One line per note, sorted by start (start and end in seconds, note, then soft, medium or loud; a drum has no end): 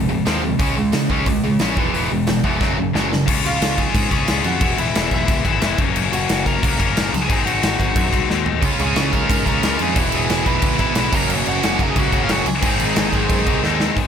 0.00 0.20 F1 medium
0.09 0.24 F2 medium
0.09 0.25 C3 medium
0.09 0.25 F3 medium
0.09 0.25 G#3 medium
0.25 0.54 D#2 medium
0.25 0.42 F2 loud
0.25 0.42 C3 loud
0.25 0.42 F3 medium
0.25 0.42 G#3 loud
0.25 0.43 C4 loud
0.25 snare loud
0.25 open hi-hat medium
0.43 0.58 F2 medium
0.43 0.58 C3 medium
0.43 0.58 F3 medium
0.43 0.58 G#3 medium
0.59 0.73 C#2 medium
0.59 0.75 C#3 medium
0.59 0.76 G#3 medium
0.59 0.76 C#4 loud
0.59 kick loud
0.59 open hi-hat medium
0.76 0.90 C#2 medium
0.76 0.92 C#3 medium
0.76 0.92 G#3 medium
0.93 1.09 C#3 medium
0.93 1.07 C#3 medium
0.93 1.09 G#3 medium
0.93 snare loud
0.93 open hi-hat medium
1.10 1.24 C#2 medium
1.10 1.26 C#3 medium
1.10 1.27 G#3 loud
1.10 1.27 C#4 medium
1.10 kick medium
1.26 1.40 C#2 medium
1.26 1.43 C#3 medium
1.26 1.43 G#3 medium
1.26 kick loud
1.26 open hi-hat medium
1.43 1.57 C#2 medium
1.43 1.59 C#3 medium
1.43 1.59 G#3 medium
1.59 1.74 A#1 medium
1.59 1.77 C#3 medium
1.59 1.77 G#3 medium
1.59 1.78 C#4 medium
1.59 snare loud
1.59 open hi-hat medium
1.77 1.90 E1 medium
1.77 1.92 E2 medium
1.77 1.92 B2 medium
1.77 1.93 E3 medium
1.77 1.94 G#3 loud
1.77 1.94 B3 loud
1.77 kick loud
1.93 2.07 E1 medium
1.93 2.09 E2 medium
1.93 2.09 B2 medium
1.93 2.10 E3 medium
1.93 2.11 G#3 medium
1.93 2.11 B3 loud
1.93 open hi-hat medium
2.10 2.25 E1 medium
2.10 2.26 E2 medium
2.10 2.26 B2 medium
2.10 2.26 E3 medium
2.10 2.26 G#3 medium
2.27 2.41 E1 medium
2.27 2.42 E2 medium
2.27 2.43 B2 medium
2.27 2.43 E3 medium
2.27 2.43 G#3 medium
2.27 snare loud
2.27 open hi-hat medium
2.44 2.58 F1 medium
2.44 2.60 E2 medium
2.44 2.60 B2 medium
2.44 2.60 E3 medium
2.44 2.60 G#3 medium
2.44 2.60 B3 medium
2.44 kick medium
2.61 2.88 F#1 medium
2.61 2.77 F#2 medium
2.61 2.77 C#3 medium
2.61 2.77 F#3 loud
2.61 kick loud
2.61 snare medium
2.78 2.92 F#2 medium
2.78 2.93 C#3 medium
2.93 3.29 F#1 loud
2.93 3.09 F#2 medium
2.93 3.09 C#3 medium
2.93 3.10 F#3 medium
2.93 snare medium
3.10 3.26 F#2 medium
3.10 3.25 C#3 medium
3.10 snare medium
3.26 3.40 C#2 medium
3.26 4.10 C#3 loud
3.26 4.10 G#3 loud
3.26 4.09 C#4 loud
3.26 4.09 F4 loud
3.26 kick loud
3.26 crash loud
3.26 crash medium
3.45 3.57 C#2 medium
3.45 3.76 F4 medium
3.45 3.80 F5 loud
3.45 crash medium
3.61 3.86 C#2 loud
3.61 snare loud
3.61 crash medium
3.78 4.09 G#4 medium
3.78 4.13 G#5 loud
3.78 kick medium
3.78 crash medium
3.94 4.07 G#2 medium
3.94 kick loud
3.94 crash loud
4.10 4.24 C#2 medium
4.10 4.25 C#3 medium
4.10 4.27 G#3 medium
4.10 4.27 C#4 medium
4.10 4.26 F4 medium
4.10 4.43 G#4 medium
4.10 kick medium
4.10 crash medium
4.14 4.46 G#5 loud
4.27 4.41 C#2 medium
4.27 4.60 C#3 medium
4.27 4.61 G#3 medium
4.27 4.61 C#4 medium
4.27 snare loud
4.27 crash medium
4.31 4.62 F4 medium
4.44 4.62 F2 medium
4.44 4.76 F#4 medium
4.44 4.77 F#5 medium
4.44 crash medium
4.61 4.74 E1 loud
4.61 5.44 E3 loud
4.61 5.44 G#3 medium
4.61 5.44 B3 loud
4.61 5.43 E4 loud
4.61 kick loud
4.61 crash medium
4.78 4.91 E1 medium
4.78 5.10 E4 medium
4.78 5.14 E5 medium
4.78 crash medium
4.95 5.08 E1 loud
4.95 snare loud
4.95 crash medium
5.11 5.24 E1 loud
5.11 5.76 E4 medium
5.11 kick medium
5.11 crash medium
5.15 5.76 E5 medium
5.28 5.41 C#2 medium
5.28 kick loud
5.28 crash loud
5.44 5.58 G#1 medium
5.44 5.60 E3 medium
5.44 5.61 G#3 medium
5.44 5.61 B3 medium
5.44 5.60 E4 medium
5.44 kick medium
5.44 crash medium
5.61 5.74 F1 loud
5.61 5.77 E3 medium
5.61 5.78 G#3 medium
5.61 5.78 B3 medium
5.61 5.79 E4 loud
5.61 snare loud
5.61 crash medium
5.78 5.91 F#1 loud
5.78 6.60 F#2 loud
5.78 6.62 C#3 loud
5.78 6.62 F#3 loud
5.78 6.62 A#3 loud
5.78 kick loud
5.78 crash medium
5.82 6.63 C#4 loud
5.95 6.08 F#1 loud
5.95 crash medium
6.12 6.25 F#1 loud
6.12 6.43 F#4 medium
6.12 6.44 F#5 medium
6.12 crash medium
6.29 6.55 F#1 loud
6.29 snare loud
6.29 crash loud
6.46 6.77 A#4 medium
6.46 6.79 A#5 loud
6.46 kick medium
6.46 crash medium
6.62 6.75 C#2 medium
6.62 6.78 F#2 medium
6.62 6.78 C#3 medium
6.62 6.79 F#3 loud
6.62 6.78 A#3 medium
6.62 6.77 C#4 medium
6.62 kick loud
6.62 crash loud
6.78 6.92 F#1 medium
6.78 7.12 F#2 medium
6.78 7.12 C#3 medium
6.78 7.12 F#3 medium
6.78 7.12 A#3 medium
6.78 7.11 C#4 medium
6.78 7.10 A#4 medium
6.78 7.14 A#5 loud
6.78 kick medium
6.78 crash medium
6.96 7.08 F#1 loud
6.96 snare loud
6.96 crash medium
7.12 7.25 C#2 loud
7.12 7.43 G#4 medium
7.12 7.46 G#5 medium
7.12 crash medium
7.28 7.42 G#1 loud
7.28 8.11 G#2 loud
7.28 8.12 D#3 loud
7.28 8.13 G#3 loud
7.28 8.11 C4 loud
7.28 8.10 D#4 loud
7.28 kick loud
7.28 crash medium
7.45 7.58 G#1 loud
7.45 7.78 F#4 medium
7.45 7.78 F#5 medium
7.45 crash medium
7.63 7.75 G#1 medium
7.63 snare loud
7.63 crash medium
7.79 7.92 G#1 loud
7.79 8.42 F#4 medium
7.79 8.42 F#5 medium
7.79 kick medium
7.79 crash medium
7.96 8.08 F#2 medium
7.96 kick loud
7.96 crash medium
8.11 8.25 C2 medium
8.11 8.28 G#2 medium
8.11 8.29 D#3 medium
8.11 8.30 G#3 medium
8.11 8.28 C4 medium
8.11 8.28 D#4 medium
8.11 kick medium
8.11 crash medium
8.29 8.55 D#2 loud
8.29 8.61 G#2 medium
8.29 8.61 D#3 medium
8.29 8.63 G#3 medium
8.29 8.63 C4 medium
8.29 8.63 D#4 medium
8.29 snare medium
8.46 floor tom loud
8.62 8.75 C#2 medium
8.62 9.45 C#3 medium
8.62 9.46 G#3 loud
8.62 9.46 C#4 loud
8.62 9.45 F4 loud
8.62 kick loud
8.62 crash loud
8.79 8.92 C#2 medium
8.79 9.11 G#4 medium
8.79 9.15 G#5 medium
8.79 crash medium
8.96 9.21 C#2 medium
8.96 snare loud
8.96 crash medium
9.12 9.96 C#3 medium
9.12 9.96 G#3 medium
9.12 9.95 C#4 medium
9.12 9.44 A#4 medium
9.12 9.45 A#5 loud
9.12 kick medium
9.12 crash medium
9.30 9.42 G#2 medium
9.30 kick loud
9.30 crash loud
9.46 9.58 C#2 medium
9.46 9.61 C#3 medium
9.46 9.62 G#3 medium
9.46 9.62 C#4 medium
9.46 9.62 F4 medium
9.46 9.78 A#4 medium
9.46 9.79 A#5 loud
9.46 kick medium
9.46 crash medium
9.62 9.76 C#2 medium
9.62 9.94 C#3 medium
9.62 9.95 G#3 medium
9.62 9.96 C#4 medium
9.62 9.97 F4 medium
9.62 snare loud
9.62 crash medium
9.79 9.93 F2 medium
9.79 9.96 G#4 medium
9.79 9.97 G#5 medium
9.79 crash medium
9.94 10.09 E1 loud
9.94 10.45 E2 medium
9.94 10.46 B2 loud
9.94 10.78 E3 loud
9.94 10.79 G#3 loud
9.94 10.79 B3 loud
9.94 10.77 E4 loud
9.94 kick loud
9.94 crash loud
9.99 10.45 E3 loud
10.12 10.25 E1 medium
10.12 10.45 G#4 medium
10.12 10.45 G#5 loud
10.12 crash medium
10.30 10.42 E1 medium
10.30 snare loud
10.30 crash medium
10.46 10.59 E1 loud
10.46 11.11 E2 medium
10.46 11.13 B2 medium
10.46 11.12 E3 medium
10.46 10.78 B4 medium
10.46 10.79 B5 loud
10.46 kick medium
10.46 crash medium
10.62 10.75 C#2 medium
10.62 kick loud
10.62 crash loud
10.78 10.92 G#1 medium
10.78 10.95 E3 medium
10.78 10.96 G#3 medium
10.78 10.96 B3 medium
10.78 10.95 E4 loud
10.78 11.11 B4 medium
10.78 11.14 B5 loud
10.78 kick medium
10.78 crash medium
10.95 11.08 B1 medium
10.95 11.12 E3 medium
10.95 11.12 G#3 medium
10.95 11.13 B3 medium
10.95 11.13 E4 medium
10.95 snare loud
10.95 crash medium
11.12 11.25 F#1 medium
11.12 11.94 F#2 loud
11.12 11.95 C#3 loud
11.12 11.96 F#3 loud
11.12 11.96 A#3 loud
11.12 11.97 C#4 loud
11.12 11.30 A#4 medium
11.12 11.30 A#5 medium
11.12 kick loud
11.12 crash loud
11.29 11.42 F#1 loud
11.29 crash medium
11.46 11.59 F#1 loud
11.46 11.79 F#4 medium
11.46 11.82 F#5 loud
11.46 crash medium
11.62 11.89 F#1 loud
11.62 12.45 F#2 medium
11.62 12.46 C#3 medium
11.62 12.47 F#3 medium
11.62 snare loud
11.62 crash medium
11.79 11.89 A#4 medium
11.79 11.90 A#5 medium
11.79 kick medium
11.79 crash medium
11.90 11.97 G#4 medium
11.90 11.98 G#5 loud
11.95 12.09 C#2 loud
11.95 12.12 F#2 medium
11.95 12.12 C#3 medium
11.95 12.12 F#3 medium
11.95 12.11 A#3 medium
11.95 12.10 C#4 loud
11.95 12.21 F#4 medium
11.95 kick loud
11.95 crash medium
11.99 12.23 F#5 medium
12.11 12.25 F#1 medium
12.11 12.47 F#2 medium
12.11 12.46 C#3 medium
12.11 12.46 F#3 medium
12.11 12.45 A#3 medium
12.11 12.45 C#4 loud
12.11 kick medium
12.11 crash medium
12.23 12.30 F4 medium
12.23 12.31 F5 medium
12.29 12.42 F#1 loud
12.29 12.47 F#4 medium
12.29 12.47 F#5 loud
12.29 snare loud
12.29 crash medium
12.46 12.59 C#2 medium
12.46 13.60 G#4 medium
12.46 13.60 G#5 medium
12.46 crash medium
12.62 12.76 G#1 loud
12.62 13.45 G#2 loud
12.62 13.46 D#3 loud
12.62 13.46 G#3 loud
12.62 13.46 C4 loud
12.62 13.44 D#4 loud
12.62 kick loud
12.62 crash loud
12.79 12.92 G#1 loud
12.79 crash medium
12.96 13.09 G#1 medium
12.96 snare loud
12.96 crash medium
13.13 13.26 G#1 medium
13.13 13.98 G#2 medium
13.13 13.97 D#3 medium
13.13 13.96 G#3 medium
13.13 kick medium
13.13 crash medium
13.29 13.43 F#2 medium
13.29 kick loud
13.29 crash medium
13.46 13.59 C2 medium
13.46 13.62 G#2 medium
13.46 13.63 D#3 medium
13.46 13.63 G#3 medium
13.46 13.63 C4 medium
13.46 13.62 D#4 loud
13.46 kick medium
13.46 crash medium
13.63 13.89 D#2 loud
13.63 13.96 G#2 medium
13.63 13.96 D#3 medium
13.63 13.97 G#3 medium
13.63 13.97 C4 medium
13.63 13.97 D#4 medium
13.63 snare medium
13.80 snare loud
13.97 14.07 G#1 medium
13.97 14.07 G#2 medium
13.97 14.07 D#3 medium
13.97 14.07 G#3 loud
13.97 kick loud
13.97 open hi-hat medium